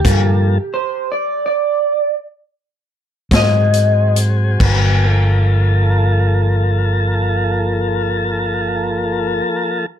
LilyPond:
<<
  \new Staff \with { instrumentName = "Clean electric guitar" } { \time 12/8 \key g \minor \tempo 4. = 44 g'4 c''8 d''8 d''4 r4. ees''4 r8 | r1. | }
  \new Staff \with { instrumentName = "Tonewheel organ" } { \time 12/8 \key g \minor <f bes a'>4 r2. r8 <ges c' aes'>4. | <fis b bes'>8 <f bes a'>1~ <f bes a'>4. | }
  \new Staff \with { instrumentName = "Fingered electric bass" } { \clef bass \time 12/8 \key g \minor g,4 r2. r8 aes,4. | g,,1. | }
  \new DrumStaff \with { instrumentName = "Drums" } \drummode { \time 12/8 <cymc hh bd>4. r4. r4. <hh bd sn>8 hh8 hh8 | <cymc bd>4. r4. r4. r4. | }
>>